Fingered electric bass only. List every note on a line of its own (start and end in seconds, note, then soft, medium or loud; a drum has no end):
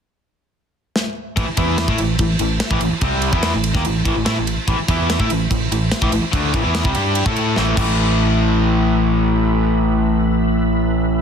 1.37 1.46 A1 medium
1.48 muted fingered electric bass stroke soft
1.57 1.86 E2 medium
1.88 1.98 A2 medium
2.00 2.18 A1 medium
2.19 2.38 A1 medium
2.39 2.59 A1 medium
2.70 2.80 A1 medium
2.81 2.91 A1 medium
2.92 muted fingered electric bass stroke soft
3.02 3.31 C2 medium
3.33 3.52 E2 medium
3.54 3.73 A1 medium
3.74 3.84 D#2 medium
3.85 4.04 A1 medium
4.05 4.15 A1 medium
4.16 4.26 A1 medium
4.27 4.36 A2 loud
4.38 4.56 A1 medium
4.68 4.77 A1 medium
4.79 muted fingered electric bass stroke soft
4.88 5.17 E2 medium
5.20 5.29 A2 medium
5.30 5.49 A1 medium
5.51 5.70 A1 medium
5.71 5.90 A1 medium
6.01 6.11 A1 loud
6.12 6.22 A1 medium
6.23 muted fingered electric bass stroke soft
6.33 6.52 D2 medium
6.53 6.63 A1 medium
6.65 6.84 E2 medium
6.85 6.94 C2 loud
6.95 7.24 G2 medium
7.26 7.55 A2 medium
7.57 7.76 A1 loud
7.77 11.22 A1 medium